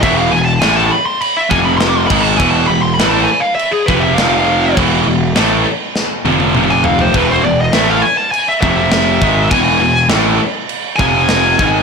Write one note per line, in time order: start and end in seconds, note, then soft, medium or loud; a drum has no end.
0.03 0.31 E1 medium
0.03 0.32 E2 medium
0.03 0.32 B2 loud
0.03 0.32 E3 loud
0.03 0.18 E5 loud
0.03 kick loud
0.03 crash medium
0.18 0.32 F5 medium
0.32 0.60 E1 medium
0.32 0.57 E2 medium
0.32 0.57 B2 medium
0.32 0.45 G#5 loud
0.45 0.60 A5 loud
0.60 0.89 A1 medium
0.60 0.91 A2 medium
0.60 0.91 E3 loud
0.60 0.91 A3 loud
0.60 0.76 G#5 medium
0.60 snare loud
0.60 crash medium
0.76 0.91 A5 loud
0.91 1.05 B5 loud
1.06 1.21 C6 loud
1.21 1.36 B5 medium
1.21 crash medium
1.37 1.51 E5 medium
1.50 2.07 F1 loud
1.50 2.09 F2 loud
1.50 2.10 C3 loud
1.50 2.10 F3 loud
1.50 1.65 G#5 medium
1.50 kick loud
1.65 1.77 B5 loud
1.77 1.88 C6 loud
1.77 snare loud
1.77 crash medium
1.89 1.98 D6 loud
1.98 2.06 C6 loud
2.07 2.38 G#1 loud
2.07 2.39 G#2 medium
2.07 2.21 B5 loud
2.07 kick loud
2.07 crash loud
2.11 2.40 D#3 loud
2.11 2.40 G#3 loud
2.22 2.37 A5 medium
2.38 2.68 E1 loud
2.38 2.69 E2 loud
2.38 2.69 B2 medium
2.38 2.69 E3 loud
2.38 2.51 G#5 loud
2.38 kick loud
2.38 crash medium
2.51 2.66 A5 loud
2.66 2.97 E1 medium
2.66 2.93 E2 medium
2.66 2.82 B5 loud
2.71 2.94 B2 medium
2.82 2.94 C6 medium
2.94 3.09 B5 loud
2.99 3.27 A1 medium
2.99 3.28 A2 loud
2.99 3.29 E3 medium
2.99 3.29 A3 loud
2.99 snare loud
2.99 crash medium
3.10 3.24 A5 loud
3.24 3.41 G#5 loud
3.40 3.55 F5 loud
3.55 3.71 E5 loud
3.59 crash medium
3.71 3.87 G#4 medium
3.86 4.16 F1 medium
3.86 4.17 F2 medium
3.86 4.17 C3 medium
3.86 4.17 F3 loud
3.86 4.01 B4 medium
3.86 kick medium
4.00 4.15 E5 medium
4.15 4.73 F1 loud
4.15 4.77 F2 medium
4.15 4.76 F5 medium
4.15 snare loud
4.15 crash medium
4.20 4.77 C3 loud
4.20 4.77 F3 medium
4.77 5.05 E1 loud
4.77 5.06 E2 loud
4.77 5.07 B2 loud
4.77 5.07 E3 loud
4.77 kick loud
4.77 crash medium
5.07 5.35 E1 medium
5.07 5.31 E2 medium
5.07 5.31 B2 medium
5.36 5.64 A1 medium
5.36 5.65 A2 loud
5.36 5.65 E3 medium
5.36 5.66 A3 loud
5.36 snare loud
5.36 crash medium
5.96 snare medium
6.25 6.53 F1 medium
6.25 6.53 F2 medium
6.25 6.54 C3 loud
6.25 6.54 F3 loud
6.25 high tom medium
6.40 high tom medium
6.55 7.10 F1 loud
6.55 7.13 F2 medium
6.55 7.13 C3 loud
6.55 7.14 F3 loud
6.55 mid tom medium
6.71 6.84 G#5 loud
6.84 6.99 F5 loud
6.84 floor tom loud
6.99 7.17 C5 medium
6.99 floor tom medium
7.14 7.42 E1 medium
7.14 7.41 E2 medium
7.14 7.42 B2 loud
7.14 7.43 E3 medium
7.14 7.30 B4 medium
7.14 kick loud
7.14 crash medium
7.30 7.44 C5 medium
7.43 7.72 E1 medium
7.43 7.67 E2 medium
7.43 7.67 B2 medium
7.43 7.58 D5 medium
7.61 7.74 D#5 medium
7.73 8.01 A1 loud
7.73 8.02 A2 medium
7.73 8.02 E3 medium
7.73 8.02 A3 loud
7.73 7.90 E5 medium
7.73 snare loud
7.73 crash medium
7.90 8.02 F5 loud
8.02 8.17 G#5 loud
8.17 8.31 A5 loud
8.31 8.46 G#5 medium
8.31 crash medium
8.49 8.57 E5 loud
8.61 9.18 F1 loud
8.61 9.21 F2 medium
8.61 9.21 C3 loud
8.61 9.21 F3 loud
8.61 9.47 E5 loud
8.61 kick loud
8.92 snare loud
8.92 crash medium
9.22 9.50 G#1 medium
9.22 9.50 G#2 medium
9.22 9.51 D#3 medium
9.22 9.51 G#3 loud
9.22 kick loud
9.51 9.79 E1 loud
9.51 9.80 E2 medium
9.51 9.80 B2 loud
9.51 9.80 E3 medium
9.51 10.07 G#5 loud
9.51 kick loud
9.51 crash medium
9.80 10.08 E1 medium
9.80 10.05 E2 medium
9.80 10.05 B2 medium
10.10 10.38 A1 medium
10.10 10.39 A2 medium
10.10 10.40 E3 loud
10.10 10.40 A3 loud
10.10 snare loud
10.10 crash medium
10.69 crash medium
10.96 11.55 F1 medium
10.96 11.58 F2 medium
10.96 11.59 C3 medium
10.96 11.83 G#5 loud
10.96 kick loud
11.01 11.59 F3 loud
11.29 snare loud
11.29 crash medium
11.59 11.83 G#1 medium
11.59 11.83 G#2 loud
11.59 11.83 D#3 loud
11.59 11.83 G#3 loud
11.59 kick loud